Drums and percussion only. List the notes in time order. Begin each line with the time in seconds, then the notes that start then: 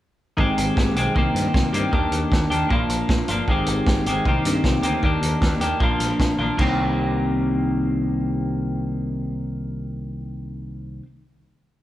0.38 kick
0.58 closed hi-hat
0.77 kick, snare
0.96 closed hi-hat
1.16 kick
1.36 snare, closed hi-hat
1.54 kick, snare
1.74 closed hi-hat
1.93 kick
2.12 closed hi-hat
2.32 kick, snare
2.51 closed hi-hat
2.70 kick
2.90 closed hi-hat
3.09 kick, snare
3.28 closed hi-hat
3.48 kick
3.66 closed hi-hat
3.87 kick, snare
4.06 closed hi-hat
4.25 kick
4.45 snare, closed hi-hat
4.64 kick, snare
4.83 closed hi-hat
5.03 kick
5.23 closed hi-hat
5.42 kick, snare
5.61 closed hi-hat
5.80 kick
6.00 snare, closed hi-hat
6.20 kick, snare
6.39 high tom
6.59 kick, crash